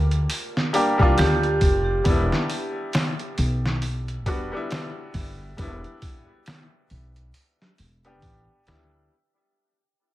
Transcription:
Already playing: upright bass D2, upright piano G3 A#3 D4 F4
0.11 closed hi-hat
0.30 open hi-hat
0.57 snare
0.73 upright piano G3 A#3 D4 G4, open hi-hat
0.98 upright bass C2, upright piano G3 A#3 D4, kick
1.02 upright piano F4
1.18 upright bass D2, vibraphone G4, snare, open hi-hat
1.43 closed hi-hat
1.61 upright bass F1, kick, open hi-hat
2.04 upright bass E1, upright piano G3 B3 D4, kick, open hi-hat
2.09 upright piano E4
2.32 snare
2.50 open hi-hat
2.93 snare, open hi-hat
3.19 closed hi-hat
3.38 upright bass B1, open hi-hat
3.66 snare
3.82 open hi-hat
4.08 closed hi-hat
4.26 upright bass E1, upright piano G3 B3 D4 F#4, kick, open hi-hat
4.52 upright piano G3 B3 D4
4.56 upright piano E4
4.71 snare, open hi-hat
5.14 upright bass G1, kick, open hi-hat
5.57 upright bass E1, upright piano G3 B3 D4, kick, open hi-hat
5.62 upright piano E4
5.84 closed hi-hat
6.02 kick, open hi-hat
6.46 snare, open hi-hat
6.90 upright bass B1, open hi-hat
7.16 closed hi-hat
7.34 open hi-hat
7.62 snare
7.78 upright bass E1, open hi-hat
8.05 upright piano G3 B3 D4 G4, closed hi-hat
8.22 upright bass A1, kick, open hi-hat
8.67 upright bass D2, upright piano G3 B3 D4 E4, snare, open hi-hat

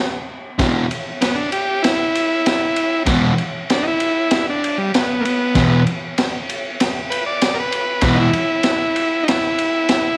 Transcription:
0.58 distorted electric guitar E2 B2 E3, kick, snare, ride
0.91 ride
1.21 transistor combo organ B3, snare, ride
1.35 transistor combo organ D4
1.52 transistor combo organ G4, ride
1.83 transistor combo organ E4, snare, ride
2.15 ride
2.46 snare, ride
2.76 ride
3.06 distorted electric guitar E2 B2 E3, kick, snare, ride
3.38 ride
3.70 transistor combo organ D4, snare, ride
3.83 transistor combo organ D#4
3.87 transistor combo organ E4
4.00 ride
4.31 snare, ride
4.50 transistor combo organ D4
4.64 ride
4.78 transistor combo organ G3
4.94 transistor combo organ B3, snare, ride
5.21 transistor combo organ A#3
5.25 transistor combo organ B3, ride
5.55 distorted electric guitar E2 B2 E3, kick, snare, ride
5.87 ride
6.18 snare, ride
6.49 ride
6.80 snare, ride
7.10 transistor combo organ B4, ride
7.26 transistor combo organ D5
7.42 snare, ride
7.54 transistor combo organ A#4
7.59 transistor combo organ B4
7.72 ride
8.01 distorted electric guitar E2 B2 E3, kick, snare, ride
8.15 transistor combo organ D#4
8.20 transistor combo organ E4
8.33 ride
8.63 snare, ride
8.96 ride
9.23 transistor combo organ D#4
9.28 transistor combo organ E4, snare, ride
9.59 ride
9.89 snare, ride

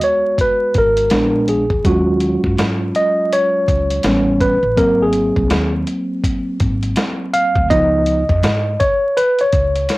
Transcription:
Already playing: tine electric piano G#3 B3 F#4
0.01 tine electric piano C#5, closed hi-hat
0.38 tine electric piano B4, kick, closed hi-hat
0.74 upright bass G#1, tine electric piano A#4, kick, closed hi-hat
0.97 closed hi-hat
1.10 upright bass A#1, tine electric piano G#3 B3 D4, snare, closed hi-hat
1.48 tine electric piano G#4, closed hi-hat
1.70 upright bass E2, kick
1.84 upright bass D#2, tine electric piano F#3 G#3 C#4 F4 F#4, kick, closed hi-hat
2.20 closed hi-hat
2.44 upright bass F#2, kick
2.57 upright bass G#2, snare, closed hi-hat
2.95 tine electric piano D#5, closed hi-hat
3.33 tine electric piano C#5, closed hi-hat
3.68 upright bass C#2, kick, closed hi-hat
3.91 closed hi-hat
4.03 upright bass A1, tine electric piano G3 B3 C#4, snare, closed hi-hat
4.41 tine electric piano B4, kick, closed hi-hat
4.63 upright bass A1
4.76 upright bass G#1, tine electric piano F#3 A#3 C4 A#4, kick, closed hi-hat
5.02 tine electric piano G#4
5.13 closed hi-hat
5.36 upright bass C2, kick
5.50 upright bass D#2, snare, closed hi-hat
5.87 closed hi-hat
6.24 kick, closed hi-hat
6.60 upright bass G#1, kick, closed hi-hat
6.83 closed hi-hat
6.96 snare, closed hi-hat
7.33 tine electric piano F5, closed hi-hat
7.55 upright bass D2, kick
7.70 upright bass C#2, tine electric piano F3 B3 D#4 D#5, kick, closed hi-hat
8.06 closed hi-hat
8.29 upright bass F2, kick
8.43 upright bass G#2, snare, closed hi-hat
8.80 tine electric piano C#5, kick, closed hi-hat
9.17 tine electric piano B4, closed hi-hat
9.39 tine electric piano C#5, closed hi-hat
9.53 upright bass C#2, kick, closed hi-hat
9.76 closed hi-hat
9.89 snare, closed hi-hat

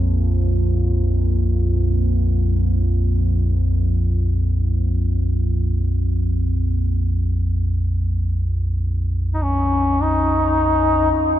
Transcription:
Already playing: synth drone A#1 F2
9.34 duduk D#4
9.43 duduk C#4
10.02 duduk D#4
11.14 synth drone A#1 F2, duduk F4

